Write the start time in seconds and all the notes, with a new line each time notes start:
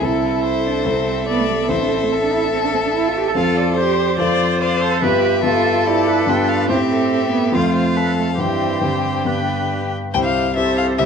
0.01 C2 C4 E4 A4 E5
0.45 C5
0.67 D4
0.85 C2 C4 E4 A4
1.28 B3 D5
1.40 A3
1.49 G3
1.61 B3
1.69 A1 C4 E4 A4 C5
1.82 D4
1.92 C4
2.03 A3
2.12 C4 A4
2.23 D4
2.33 E4
2.44 D4
2.53 C4
2.64 D4
2.74 C4
2.86 D4
2.94 E4
3.08 F4
3.17 G4
3.28 A4
3.35 F2 C4 F4 A4 F5
3.57 D5
3.77 G4 C5
4.18 F2 C4 F4 A4 C5 D5
4.61 C5 D5 F5
4.81 A4 C5
5.02 G2 B3 F4 G4 B4 E5
5.24 B4
5.43 G2 B3 F4 G4 A4
5.86 E4 G4 D5
6.07 B4
6.27 G2 B3 D4 F4 G4 G5
6.49 F5
6.68 A2 C4 E4 G4 C5 E5
6.91 A4
7.11 A4 E5
7.32 B3
7.52 F2 A3 C4 F4 A4 C5 F5
7.76 F5
7.96 A4 B4
8.17 A3 A4
8.38 G2 E3 C4 D4 G4 C5 G5
8.81 G2 D3 C4 D4 G4
9.25 G2 B3 D4 G4 B4 G5
10.13 C2 C3 E4 G4 C5 G5
10.24 F5
10.56 C4 E4 G4 A4 C5 E5
10.78 F5
10.98 C2 C3 G4 C5 E5